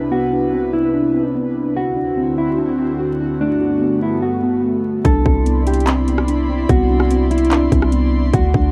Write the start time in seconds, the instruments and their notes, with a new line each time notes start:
Already playing: analog synth pad C2 C3 D4 E4 B4, synth keys C4 D4
0.11 synth keys B3, clean electric guitar F#4
0.33 synth keys D4
0.53 synth keys C4
0.73 clean electric guitar E4
0.94 synth keys D4
1.14 synth keys C4
1.35 synth keys B3
1.76 analog synth pad D2 D3 C4 E4 F#4, synth keys F#4, clean electric guitar F#4
1.96 synth keys D4
2.17 synth keys C4
2.37 clean electric guitar E4, synth keys F#4
2.58 synth keys D4
2.79 synth keys C4
2.99 synth keys F#4
3.21 synth keys D4
3.40 analog synth pad G2 A3 B3, synth keys A3, clean electric guitar D4
3.61 synth keys F#4
3.81 synth keys B3
4.02 clean electric guitar E4
4.22 clean electric guitar F#4, synth keys F#4
4.43 synth keys B3
4.64 synth keys A3
5.05 808-style bass C2, synth keys D4, analog synth pad E4 D5 B5 C6, clean electric guitar A4, kick, closed hi-hat
5.25 808-style bass C2, synth keys C4, kick
5.46 synth keys B3, closed hi-hat
5.67 synth keys D4, clean electric guitar G4, closed hi-hat
5.74 closed hi-hat
5.80 closed hi-hat
5.87 synth keys C4, clap, closed hi-hat
6.08 synth keys B3, closed hi-hat
6.18 cross-stick
6.28 synth keys D4, closed hi-hat
6.49 synth keys C4
6.69 808-style bass C2, synth keys B3, clean electric guitar F#4, kick, closed hi-hat
6.90 synth keys D4
7.00 cross-stick
7.10 synth keys C4, closed hi-hat
7.31 clean electric guitar E4, closed hi-hat
7.38 closed hi-hat
7.45 closed hi-hat
7.51 synth keys D4, clap, closed hi-hat
7.72 808-style bass C2, synth keys C4, kick, closed hi-hat
7.82 cross-stick
7.92 synth keys B3, closed hi-hat
8.34 808-style bass D2, synth keys F#4, analog synth pad F#4 A5, clean electric guitar F#4, kick, closed hi-hat
8.54 808-style bass D2, synth keys D4, kick